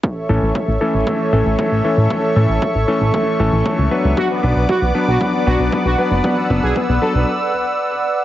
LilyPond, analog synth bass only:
\new Staff \with { instrumentName = "Analog synth bass" } { \clef bass \time 4/4 \key a \major \tempo 4 = 116 r8 a,,16 a,,16 r16 a,,16 r16 a,,16 r8 a,,16 a,,16 r16 a,,16 r16 a,16 | r8 a,16 a,,16 r16 a,,16 r16 a,,16 r8 a,,16 a,,16 r16 cis,16 r16 cis,16 | r8 b,,16 b,,16 r16 b,,16 r16 b,,16 r8 b,,16 b,,16 r16 b,,16 r16 fis,,16 | r8 fis,,16 b,,16 r16 b,,16 r16 b,,16 r2 | }